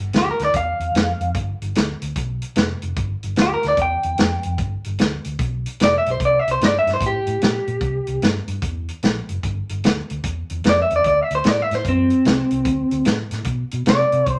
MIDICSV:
0, 0, Header, 1, 4, 480
1, 0, Start_track
1, 0, Tempo, 403769
1, 1607, Time_signature, 4, 2, 24, 8
1, 17107, End_track
2, 0, Start_track
2, 0, Title_t, "Clean electric guitar"
2, 0, Program_c, 0, 27
2, 211, Note_on_c, 0, 67, 82
2, 344, Note_off_c, 0, 67, 0
2, 366, Note_on_c, 0, 70, 64
2, 502, Note_off_c, 0, 70, 0
2, 530, Note_on_c, 0, 74, 63
2, 664, Note_off_c, 0, 74, 0
2, 673, Note_on_c, 0, 77, 77
2, 1593, Note_off_c, 0, 77, 0
2, 4062, Note_on_c, 0, 67, 77
2, 4193, Note_off_c, 0, 67, 0
2, 4206, Note_on_c, 0, 70, 74
2, 4345, Note_off_c, 0, 70, 0
2, 4379, Note_on_c, 0, 74, 70
2, 4512, Note_off_c, 0, 74, 0
2, 4537, Note_on_c, 0, 79, 84
2, 5448, Note_off_c, 0, 79, 0
2, 6937, Note_on_c, 0, 74, 82
2, 7072, Note_off_c, 0, 74, 0
2, 7108, Note_on_c, 0, 76, 63
2, 7238, Note_off_c, 0, 76, 0
2, 7267, Note_on_c, 0, 72, 73
2, 7398, Note_off_c, 0, 72, 0
2, 7433, Note_on_c, 0, 74, 70
2, 7602, Note_off_c, 0, 74, 0
2, 7602, Note_on_c, 0, 76, 67
2, 7725, Note_off_c, 0, 76, 0
2, 7744, Note_on_c, 0, 72, 67
2, 7904, Note_off_c, 0, 72, 0
2, 7904, Note_on_c, 0, 74, 66
2, 8036, Note_off_c, 0, 74, 0
2, 8068, Note_on_c, 0, 76, 73
2, 8198, Note_off_c, 0, 76, 0
2, 8244, Note_on_c, 0, 72, 68
2, 8366, Note_off_c, 0, 72, 0
2, 8397, Note_on_c, 0, 67, 83
2, 9764, Note_off_c, 0, 67, 0
2, 12712, Note_on_c, 0, 74, 78
2, 12838, Note_off_c, 0, 74, 0
2, 12863, Note_on_c, 0, 76, 63
2, 12994, Note_off_c, 0, 76, 0
2, 13028, Note_on_c, 0, 74, 80
2, 13146, Note_off_c, 0, 74, 0
2, 13160, Note_on_c, 0, 74, 78
2, 13302, Note_off_c, 0, 74, 0
2, 13345, Note_on_c, 0, 76, 70
2, 13474, Note_off_c, 0, 76, 0
2, 13494, Note_on_c, 0, 72, 70
2, 13645, Note_off_c, 0, 72, 0
2, 13645, Note_on_c, 0, 74, 78
2, 13815, Note_off_c, 0, 74, 0
2, 13815, Note_on_c, 0, 76, 71
2, 13949, Note_off_c, 0, 76, 0
2, 13968, Note_on_c, 0, 72, 81
2, 14105, Note_off_c, 0, 72, 0
2, 14129, Note_on_c, 0, 60, 93
2, 15505, Note_off_c, 0, 60, 0
2, 16521, Note_on_c, 0, 74, 87
2, 17107, Note_off_c, 0, 74, 0
2, 17107, End_track
3, 0, Start_track
3, 0, Title_t, "Fingered electric bass"
3, 0, Program_c, 1, 33
3, 165, Note_on_c, 1, 38, 71
3, 366, Note_off_c, 1, 38, 0
3, 472, Note_on_c, 1, 38, 77
3, 584, Note_off_c, 1, 38, 0
3, 642, Note_on_c, 1, 40, 77
3, 845, Note_off_c, 1, 40, 0
3, 947, Note_on_c, 1, 40, 74
3, 1061, Note_off_c, 1, 40, 0
3, 1119, Note_on_c, 1, 41, 77
3, 1323, Note_off_c, 1, 41, 0
3, 1431, Note_on_c, 1, 41, 92
3, 1544, Note_off_c, 1, 41, 0
3, 1605, Note_on_c, 1, 31, 82
3, 1807, Note_off_c, 1, 31, 0
3, 1926, Note_on_c, 1, 31, 81
3, 2034, Note_off_c, 1, 31, 0
3, 2095, Note_on_c, 1, 38, 74
3, 2295, Note_off_c, 1, 38, 0
3, 2404, Note_on_c, 1, 38, 83
3, 2513, Note_off_c, 1, 38, 0
3, 2572, Note_on_c, 1, 35, 77
3, 2884, Note_off_c, 1, 35, 0
3, 3040, Note_on_c, 1, 29, 74
3, 3245, Note_off_c, 1, 29, 0
3, 3364, Note_on_c, 1, 29, 84
3, 3474, Note_off_c, 1, 29, 0
3, 3530, Note_on_c, 1, 31, 79
3, 3732, Note_off_c, 1, 31, 0
3, 3850, Note_on_c, 1, 31, 84
3, 3958, Note_off_c, 1, 31, 0
3, 4012, Note_on_c, 1, 38, 70
3, 4214, Note_off_c, 1, 38, 0
3, 4329, Note_on_c, 1, 38, 80
3, 4438, Note_off_c, 1, 38, 0
3, 4488, Note_on_c, 1, 40, 76
3, 4691, Note_off_c, 1, 40, 0
3, 4808, Note_on_c, 1, 40, 84
3, 4917, Note_off_c, 1, 40, 0
3, 4974, Note_on_c, 1, 41, 82
3, 5175, Note_off_c, 1, 41, 0
3, 5296, Note_on_c, 1, 41, 89
3, 5403, Note_off_c, 1, 41, 0
3, 5447, Note_on_c, 1, 31, 86
3, 5651, Note_off_c, 1, 31, 0
3, 5781, Note_on_c, 1, 31, 80
3, 5887, Note_off_c, 1, 31, 0
3, 5953, Note_on_c, 1, 38, 80
3, 6148, Note_off_c, 1, 38, 0
3, 6249, Note_on_c, 1, 38, 80
3, 6358, Note_off_c, 1, 38, 0
3, 6409, Note_on_c, 1, 35, 85
3, 6723, Note_off_c, 1, 35, 0
3, 6902, Note_on_c, 1, 29, 70
3, 7101, Note_off_c, 1, 29, 0
3, 7215, Note_on_c, 1, 35, 84
3, 7323, Note_off_c, 1, 35, 0
3, 7372, Note_on_c, 1, 36, 73
3, 7575, Note_off_c, 1, 36, 0
3, 7696, Note_on_c, 1, 36, 69
3, 7804, Note_off_c, 1, 36, 0
3, 7858, Note_on_c, 1, 43, 68
3, 8058, Note_off_c, 1, 43, 0
3, 8163, Note_on_c, 1, 43, 78
3, 8275, Note_off_c, 1, 43, 0
3, 8333, Note_on_c, 1, 45, 79
3, 8535, Note_off_c, 1, 45, 0
3, 8644, Note_on_c, 1, 45, 81
3, 8755, Note_off_c, 1, 45, 0
3, 8827, Note_on_c, 1, 46, 71
3, 9024, Note_off_c, 1, 46, 0
3, 9123, Note_on_c, 1, 46, 77
3, 9234, Note_off_c, 1, 46, 0
3, 9285, Note_on_c, 1, 36, 83
3, 9490, Note_off_c, 1, 36, 0
3, 9607, Note_on_c, 1, 36, 87
3, 9717, Note_off_c, 1, 36, 0
3, 9773, Note_on_c, 1, 43, 77
3, 9975, Note_off_c, 1, 43, 0
3, 10078, Note_on_c, 1, 43, 74
3, 10191, Note_off_c, 1, 43, 0
3, 10251, Note_on_c, 1, 40, 80
3, 10564, Note_off_c, 1, 40, 0
3, 10736, Note_on_c, 1, 34, 79
3, 10936, Note_off_c, 1, 34, 0
3, 11045, Note_on_c, 1, 30, 84
3, 11156, Note_off_c, 1, 30, 0
3, 11219, Note_on_c, 1, 31, 91
3, 11418, Note_off_c, 1, 31, 0
3, 11535, Note_on_c, 1, 31, 78
3, 11642, Note_off_c, 1, 31, 0
3, 11702, Note_on_c, 1, 38, 72
3, 11900, Note_off_c, 1, 38, 0
3, 12018, Note_on_c, 1, 38, 80
3, 12124, Note_off_c, 1, 38, 0
3, 12171, Note_on_c, 1, 40, 75
3, 12373, Note_off_c, 1, 40, 0
3, 12492, Note_on_c, 1, 40, 80
3, 12600, Note_off_c, 1, 40, 0
3, 12655, Note_on_c, 1, 41, 76
3, 12855, Note_off_c, 1, 41, 0
3, 12973, Note_on_c, 1, 40, 84
3, 13080, Note_off_c, 1, 40, 0
3, 13126, Note_on_c, 1, 38, 87
3, 13329, Note_off_c, 1, 38, 0
3, 13442, Note_on_c, 1, 38, 81
3, 13553, Note_off_c, 1, 38, 0
3, 13612, Note_on_c, 1, 45, 73
3, 13813, Note_off_c, 1, 45, 0
3, 13922, Note_on_c, 1, 45, 74
3, 14033, Note_off_c, 1, 45, 0
3, 14085, Note_on_c, 1, 42, 81
3, 14399, Note_off_c, 1, 42, 0
3, 14563, Note_on_c, 1, 36, 69
3, 14767, Note_off_c, 1, 36, 0
3, 14884, Note_on_c, 1, 36, 85
3, 14993, Note_off_c, 1, 36, 0
3, 15045, Note_on_c, 1, 38, 75
3, 15248, Note_off_c, 1, 38, 0
3, 15355, Note_on_c, 1, 38, 75
3, 15467, Note_off_c, 1, 38, 0
3, 15525, Note_on_c, 1, 45, 72
3, 15727, Note_off_c, 1, 45, 0
3, 15827, Note_on_c, 1, 45, 74
3, 15942, Note_off_c, 1, 45, 0
3, 15990, Note_on_c, 1, 47, 74
3, 16197, Note_off_c, 1, 47, 0
3, 16322, Note_on_c, 1, 47, 91
3, 16431, Note_off_c, 1, 47, 0
3, 16483, Note_on_c, 1, 48, 74
3, 16685, Note_off_c, 1, 48, 0
3, 16794, Note_on_c, 1, 48, 84
3, 16905, Note_off_c, 1, 48, 0
3, 16959, Note_on_c, 1, 36, 86
3, 17107, Note_off_c, 1, 36, 0
3, 17107, End_track
4, 0, Start_track
4, 0, Title_t, "Drums"
4, 156, Note_on_c, 9, 42, 67
4, 171, Note_on_c, 9, 38, 95
4, 275, Note_off_c, 9, 42, 0
4, 290, Note_off_c, 9, 38, 0
4, 468, Note_on_c, 9, 42, 55
4, 483, Note_on_c, 9, 38, 32
4, 587, Note_off_c, 9, 42, 0
4, 602, Note_off_c, 9, 38, 0
4, 640, Note_on_c, 9, 36, 98
4, 640, Note_on_c, 9, 42, 72
4, 759, Note_off_c, 9, 36, 0
4, 759, Note_off_c, 9, 42, 0
4, 955, Note_on_c, 9, 42, 49
4, 1074, Note_off_c, 9, 42, 0
4, 1127, Note_on_c, 9, 42, 72
4, 1143, Note_on_c, 9, 38, 97
4, 1246, Note_off_c, 9, 42, 0
4, 1262, Note_off_c, 9, 38, 0
4, 1434, Note_on_c, 9, 42, 49
4, 1553, Note_off_c, 9, 42, 0
4, 1601, Note_on_c, 9, 42, 72
4, 1602, Note_on_c, 9, 36, 97
4, 1720, Note_off_c, 9, 42, 0
4, 1721, Note_off_c, 9, 36, 0
4, 1921, Note_on_c, 9, 42, 53
4, 2040, Note_off_c, 9, 42, 0
4, 2083, Note_on_c, 9, 42, 78
4, 2099, Note_on_c, 9, 38, 89
4, 2202, Note_off_c, 9, 42, 0
4, 2218, Note_off_c, 9, 38, 0
4, 2397, Note_on_c, 9, 42, 63
4, 2516, Note_off_c, 9, 42, 0
4, 2564, Note_on_c, 9, 42, 77
4, 2566, Note_on_c, 9, 36, 98
4, 2682, Note_off_c, 9, 42, 0
4, 2685, Note_off_c, 9, 36, 0
4, 2872, Note_on_c, 9, 42, 58
4, 2991, Note_off_c, 9, 42, 0
4, 3037, Note_on_c, 9, 42, 72
4, 3052, Note_on_c, 9, 38, 101
4, 3156, Note_off_c, 9, 42, 0
4, 3171, Note_off_c, 9, 38, 0
4, 3350, Note_on_c, 9, 42, 59
4, 3469, Note_off_c, 9, 42, 0
4, 3523, Note_on_c, 9, 42, 71
4, 3526, Note_on_c, 9, 36, 104
4, 3642, Note_off_c, 9, 42, 0
4, 3645, Note_off_c, 9, 36, 0
4, 3836, Note_on_c, 9, 42, 57
4, 3955, Note_off_c, 9, 42, 0
4, 3995, Note_on_c, 9, 42, 70
4, 4010, Note_on_c, 9, 38, 104
4, 4113, Note_off_c, 9, 42, 0
4, 4129, Note_off_c, 9, 38, 0
4, 4314, Note_on_c, 9, 42, 58
4, 4329, Note_on_c, 9, 38, 29
4, 4432, Note_off_c, 9, 42, 0
4, 4448, Note_off_c, 9, 38, 0
4, 4482, Note_on_c, 9, 42, 68
4, 4484, Note_on_c, 9, 36, 95
4, 4601, Note_off_c, 9, 42, 0
4, 4603, Note_off_c, 9, 36, 0
4, 4792, Note_on_c, 9, 42, 55
4, 4911, Note_off_c, 9, 42, 0
4, 4965, Note_on_c, 9, 42, 73
4, 4980, Note_on_c, 9, 38, 104
4, 5084, Note_off_c, 9, 42, 0
4, 5099, Note_off_c, 9, 38, 0
4, 5266, Note_on_c, 9, 42, 55
4, 5385, Note_off_c, 9, 42, 0
4, 5448, Note_on_c, 9, 36, 102
4, 5449, Note_on_c, 9, 42, 68
4, 5566, Note_off_c, 9, 36, 0
4, 5568, Note_off_c, 9, 42, 0
4, 5758, Note_on_c, 9, 42, 52
4, 5877, Note_off_c, 9, 42, 0
4, 5926, Note_on_c, 9, 42, 75
4, 5941, Note_on_c, 9, 38, 100
4, 6045, Note_off_c, 9, 42, 0
4, 6060, Note_off_c, 9, 38, 0
4, 6234, Note_on_c, 9, 42, 57
4, 6353, Note_off_c, 9, 42, 0
4, 6407, Note_on_c, 9, 42, 69
4, 6409, Note_on_c, 9, 36, 108
4, 6525, Note_off_c, 9, 42, 0
4, 6527, Note_off_c, 9, 36, 0
4, 6726, Note_on_c, 9, 42, 56
4, 6844, Note_off_c, 9, 42, 0
4, 6894, Note_on_c, 9, 42, 80
4, 6909, Note_on_c, 9, 38, 99
4, 7012, Note_off_c, 9, 42, 0
4, 7028, Note_off_c, 9, 38, 0
4, 7207, Note_on_c, 9, 42, 61
4, 7325, Note_off_c, 9, 42, 0
4, 7371, Note_on_c, 9, 36, 101
4, 7375, Note_on_c, 9, 42, 67
4, 7490, Note_off_c, 9, 36, 0
4, 7493, Note_off_c, 9, 42, 0
4, 7698, Note_on_c, 9, 42, 62
4, 7817, Note_off_c, 9, 42, 0
4, 7861, Note_on_c, 9, 42, 79
4, 7877, Note_on_c, 9, 38, 98
4, 7980, Note_off_c, 9, 42, 0
4, 7996, Note_off_c, 9, 38, 0
4, 8167, Note_on_c, 9, 42, 52
4, 8183, Note_on_c, 9, 38, 29
4, 8286, Note_off_c, 9, 42, 0
4, 8302, Note_off_c, 9, 38, 0
4, 8328, Note_on_c, 9, 36, 102
4, 8338, Note_on_c, 9, 42, 80
4, 8447, Note_off_c, 9, 36, 0
4, 8457, Note_off_c, 9, 42, 0
4, 8637, Note_on_c, 9, 42, 56
4, 8756, Note_off_c, 9, 42, 0
4, 8814, Note_on_c, 9, 42, 72
4, 8829, Note_on_c, 9, 38, 97
4, 8933, Note_off_c, 9, 42, 0
4, 8948, Note_off_c, 9, 38, 0
4, 9122, Note_on_c, 9, 42, 47
4, 9241, Note_off_c, 9, 42, 0
4, 9283, Note_on_c, 9, 36, 98
4, 9284, Note_on_c, 9, 42, 68
4, 9402, Note_off_c, 9, 36, 0
4, 9403, Note_off_c, 9, 42, 0
4, 9590, Note_on_c, 9, 42, 53
4, 9709, Note_off_c, 9, 42, 0
4, 9771, Note_on_c, 9, 42, 72
4, 9787, Note_on_c, 9, 38, 105
4, 9890, Note_off_c, 9, 42, 0
4, 9906, Note_off_c, 9, 38, 0
4, 10076, Note_on_c, 9, 42, 54
4, 10195, Note_off_c, 9, 42, 0
4, 10248, Note_on_c, 9, 36, 93
4, 10248, Note_on_c, 9, 42, 71
4, 10367, Note_off_c, 9, 36, 0
4, 10367, Note_off_c, 9, 42, 0
4, 10561, Note_on_c, 9, 42, 57
4, 10680, Note_off_c, 9, 42, 0
4, 10729, Note_on_c, 9, 42, 72
4, 10744, Note_on_c, 9, 38, 100
4, 10848, Note_off_c, 9, 42, 0
4, 10863, Note_off_c, 9, 38, 0
4, 11040, Note_on_c, 9, 42, 54
4, 11159, Note_off_c, 9, 42, 0
4, 11214, Note_on_c, 9, 36, 89
4, 11214, Note_on_c, 9, 42, 70
4, 11333, Note_off_c, 9, 36, 0
4, 11333, Note_off_c, 9, 42, 0
4, 11522, Note_on_c, 9, 42, 57
4, 11641, Note_off_c, 9, 42, 0
4, 11694, Note_on_c, 9, 42, 81
4, 11710, Note_on_c, 9, 38, 105
4, 11813, Note_off_c, 9, 42, 0
4, 11829, Note_off_c, 9, 38, 0
4, 12003, Note_on_c, 9, 42, 59
4, 12122, Note_off_c, 9, 42, 0
4, 12167, Note_on_c, 9, 42, 85
4, 12171, Note_on_c, 9, 36, 91
4, 12286, Note_off_c, 9, 42, 0
4, 12290, Note_off_c, 9, 36, 0
4, 12477, Note_on_c, 9, 42, 58
4, 12596, Note_off_c, 9, 42, 0
4, 12648, Note_on_c, 9, 42, 81
4, 12664, Note_on_c, 9, 38, 97
4, 12767, Note_off_c, 9, 42, 0
4, 12783, Note_off_c, 9, 38, 0
4, 12962, Note_on_c, 9, 42, 50
4, 13081, Note_off_c, 9, 42, 0
4, 13126, Note_on_c, 9, 42, 63
4, 13129, Note_on_c, 9, 36, 89
4, 13245, Note_off_c, 9, 42, 0
4, 13247, Note_off_c, 9, 36, 0
4, 13440, Note_on_c, 9, 42, 57
4, 13558, Note_off_c, 9, 42, 0
4, 13598, Note_on_c, 9, 42, 68
4, 13613, Note_on_c, 9, 38, 103
4, 13717, Note_off_c, 9, 42, 0
4, 13732, Note_off_c, 9, 38, 0
4, 13920, Note_on_c, 9, 42, 57
4, 13936, Note_on_c, 9, 38, 32
4, 14039, Note_off_c, 9, 42, 0
4, 14055, Note_off_c, 9, 38, 0
4, 14084, Note_on_c, 9, 36, 96
4, 14086, Note_on_c, 9, 42, 64
4, 14203, Note_off_c, 9, 36, 0
4, 14205, Note_off_c, 9, 42, 0
4, 14385, Note_on_c, 9, 42, 51
4, 14504, Note_off_c, 9, 42, 0
4, 14564, Note_on_c, 9, 42, 68
4, 14580, Note_on_c, 9, 38, 100
4, 14683, Note_off_c, 9, 42, 0
4, 14699, Note_off_c, 9, 38, 0
4, 14867, Note_on_c, 9, 42, 54
4, 14986, Note_off_c, 9, 42, 0
4, 15037, Note_on_c, 9, 42, 73
4, 15040, Note_on_c, 9, 36, 94
4, 15155, Note_off_c, 9, 42, 0
4, 15159, Note_off_c, 9, 36, 0
4, 15348, Note_on_c, 9, 42, 53
4, 15467, Note_off_c, 9, 42, 0
4, 15513, Note_on_c, 9, 42, 77
4, 15528, Note_on_c, 9, 38, 97
4, 15631, Note_off_c, 9, 42, 0
4, 15647, Note_off_c, 9, 38, 0
4, 15821, Note_on_c, 9, 42, 65
4, 15836, Note_on_c, 9, 38, 29
4, 15940, Note_off_c, 9, 42, 0
4, 15955, Note_off_c, 9, 38, 0
4, 15982, Note_on_c, 9, 42, 78
4, 15993, Note_on_c, 9, 36, 89
4, 16101, Note_off_c, 9, 42, 0
4, 16111, Note_off_c, 9, 36, 0
4, 16301, Note_on_c, 9, 42, 64
4, 16420, Note_off_c, 9, 42, 0
4, 16473, Note_on_c, 9, 42, 71
4, 16488, Note_on_c, 9, 38, 111
4, 16592, Note_off_c, 9, 42, 0
4, 16607, Note_off_c, 9, 38, 0
4, 16786, Note_on_c, 9, 42, 56
4, 16905, Note_off_c, 9, 42, 0
4, 16958, Note_on_c, 9, 36, 95
4, 16959, Note_on_c, 9, 42, 70
4, 17076, Note_off_c, 9, 36, 0
4, 17078, Note_off_c, 9, 42, 0
4, 17107, End_track
0, 0, End_of_file